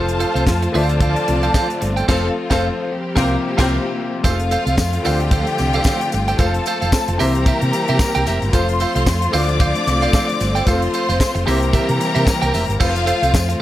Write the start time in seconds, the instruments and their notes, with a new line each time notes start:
Already playing: fingered electric bass F1, grand piano F3 F4 A4 C5, string section A3 C4 F4 C5 A5
0.09 closed hi-hat
0.20 clean electric guitar A4 C5 F5, closed hi-hat
0.34 fingered electric bass C2, clean electric guitar A4 C5 F5, closed hi-hat
0.47 fingered electric bass F2, muted clean electric guitar stroke, kick, snare
0.62 muted clean electric guitar stroke, closed hi-hat
0.72 fingered electric bass D2, grand piano D3 D4 F4 C5, string section D3 F3 F4 D5 A5, clean electric guitar A4 C5 F5, open hi-hat
0.89 muted clean electric guitar stroke, closed hi-hat
1.00 clean electric guitar A4 C5 F5, kick, closed hi-hat
1.16 muted clean electric guitar stroke, closed hi-hat
1.28 fingered electric bass C2, muted clean electric guitar stroke, closed hi-hat
1.43 clean electric guitar A4 C5 F5, closed hi-hat
1.54 clean electric guitar A4 C5 F5, kick, snare
1.69 muted clean electric guitar stroke, closed hi-hat
1.81 fingered electric bass G1, muted clean electric guitar stroke, snare, closed hi-hat
1.96 clean electric guitar A4 C5 G5, closed hi-hat
2.08 fingered electric bass F1, grand piano F3 F4 A4 C5, string section C4 F4 A4 F5, clean electric guitar A4 C5 F5, kick, snare, crash
2.50 fingered electric bass F1, grand piano F3 F4 A4 C5, string section C4 A4 F5, clean electric guitar A4 C5 F5, kick, snare
2.90 string section F3 G3 A#3 G4
3.15 fingered electric bass C2, grand piano C3 A#3 F4 C5, string section C4 A#4 G5, clean electric guitar A#4 C5 F5, kick, snare
3.57 fingered electric bass C2, grand piano C3 A#3 F4 C5, string section C4 A#4 G5, clean electric guitar A#4 C5 F5, kick, snare, crash
4.23 fingered electric bass F1, grand piano F3 F4 G#4 C5, string section A3 C4 F4 F5, clean electric guitar A4 C5 F5, kick, closed hi-hat, tambourine
4.30 grand piano A4
4.40 closed hi-hat
4.51 clean electric guitar A4 C5 F5, closed hi-hat, tambourine
4.66 fingered electric bass C2, clean electric guitar A4 C5 F5, closed hi-hat
4.78 fingered electric bass F2, muted clean electric guitar stroke, kick, snare, tambourine
4.93 muted clean electric guitar stroke, closed hi-hat
5.03 fingered electric bass D2, grand piano D3 D4 F4 C5, string section D3 F3 G4 G5, clean electric guitar A4 C5 F5, open hi-hat, tambourine
5.20 muted clean electric guitar stroke, closed hi-hat
5.31 clean electric guitar A4 C5 F5, kick, closed hi-hat
5.47 muted clean electric guitar stroke, closed hi-hat
5.58 fingered electric bass C2, muted clean electric guitar stroke, closed hi-hat, tambourine
5.73 clean electric guitar A4 C5 F5, closed hi-hat
5.84 clean electric guitar A4 C5 F5, kick, snare, tambourine
6.01 muted clean electric guitar stroke, closed hi-hat
6.12 fingered electric bass G1, muted clean electric guitar stroke, closed hi-hat, tambourine
6.28 clean electric guitar A4 C5 G5, closed hi-hat
6.38 fingered electric bass F1, grand piano F3 F4 A4 C5, string section A3 C4 A4 A5, clean electric guitar A4 C5 F5, kick, closed hi-hat, tambourine
6.54 closed hi-hat
6.65 clean electric guitar A4 C5 F5, closed hi-hat, tambourine
6.81 fingered electric bass F1, clean electric guitar A4 C5 F5, closed hi-hat
6.92 muted clean electric guitar stroke, kick, snare, tambourine
7.08 fingered electric bass F1, muted clean electric guitar stroke, closed hi-hat
7.18 fingered electric bass C2, grand piano C3 A#3 E4 C5, string section E3 G3 A#3 G4 A#4 A#5, clean electric guitar G4 A#4 E5, open hi-hat, tambourine
7.35 closed hi-hat
7.46 clean electric guitar G4 A#4 E5, kick, closed hi-hat, tambourine
7.61 fingered electric bass C3, muted clean electric guitar stroke, closed hi-hat
7.73 muted clean electric guitar stroke, closed hi-hat, tambourine
7.88 fingered electric bass C3, clean electric guitar G4 A#4 E5, closed hi-hat
7.99 kick, snare, tambourine
8.15 fingered electric bass C2, clean electric guitar G4 A#4 G5, closed hi-hat
8.26 fingered electric bass F1, clean electric guitar G4 A#4 E5, snare, closed hi-hat, tambourine
8.42 fingered electric bass G1, muted clean electric guitar stroke, closed hi-hat
8.53 fingered electric bass F1, grand piano F3 F4 A4 C5, string section A3 C4 F4 C5 C6, clean electric guitar A4 C5 F5, kick, closed hi-hat, tambourine
8.69 closed hi-hat
8.80 clean electric guitar A4 C5 F5, closed hi-hat, tambourine
8.95 fingered electric bass C2, clean electric guitar A4 C5 F5, closed hi-hat
9.06 fingered electric bass F2, kick, snare, tambourine
9.21 muted clean electric guitar stroke, closed hi-hat
9.32 fingered electric bass D2, grand piano D3 D4 F4 C5, string section D3 F3 D5 D6, clean electric guitar A4 C5 F5, open hi-hat, tambourine
9.49 muted clean electric guitar stroke, closed hi-hat
9.60 clean electric guitar A4 C5 F5, kick, closed hi-hat
9.75 closed hi-hat
9.87 fingered electric bass C2, muted clean electric guitar stroke, closed hi-hat, tambourine
10.02 clean electric guitar A4 C5 F5, closed hi-hat
10.13 clean electric guitar A4 C5 F5, kick, snare, tambourine
10.29 muted clean electric guitar stroke, closed hi-hat
10.40 fingered electric bass G1, muted clean electric guitar stroke, snare, closed hi-hat, tambourine
10.55 clean electric guitar A4 C5 G5, closed hi-hat
10.66 fingered electric bass F1, grand piano F3 F4 A4 C5, string section F4 C5 C6, clean electric guitar A4 C5 F5, kick, closed hi-hat, tambourine
10.82 closed hi-hat
10.94 clean electric guitar A4 C5 F5, closed hi-hat
11.09 fingered electric bass F1, clean electric guitar A4 C5 F5, closed hi-hat
11.20 muted clean electric guitar stroke, kick, snare, tambourine
11.35 fingered electric bass F1, muted clean electric guitar stroke, closed hi-hat
11.46 fingered electric bass C2, grand piano C3 A#3 E4 C5, string section E3 G3 A#3 G4 A#4 A#5, clean electric guitar G4 A#4 E5, open hi-hat, tambourine
11.61 muted clean electric guitar stroke, closed hi-hat
11.73 clean electric guitar G4 A#4 E5, kick, closed hi-hat, tambourine
11.89 fingered electric bass C3, muted clean electric guitar stroke, closed hi-hat
12.00 muted clean electric guitar stroke, closed hi-hat, tambourine
12.15 fingered electric bass C3, clean electric guitar G4 A#4 E5, closed hi-hat
12.27 kick, snare, tambourine
12.42 fingered electric bass C2, clean electric guitar G4 A#4 G5, closed hi-hat
12.54 fingered electric bass F1, clean electric guitar G4 A#4 E5, snare, open hi-hat, tambourine
12.69 fingered electric bass G1, closed hi-hat
12.80 fingered electric bass F1, grand piano F3 F4 A4 B4, string section A3 C4 F4 F5, clean electric guitar A4 C5 F5, kick, crash, tambourine
12.88 grand piano C5
12.96 closed hi-hat
13.06 clean electric guitar A4 C5 F5, closed hi-hat
13.22 fingered electric bass C2, clean electric guitar A4 C5 F5, closed hi-hat
13.34 fingered electric bass F2, muted clean electric guitar stroke, kick, snare, tambourine
13.49 muted clean electric guitar stroke, closed hi-hat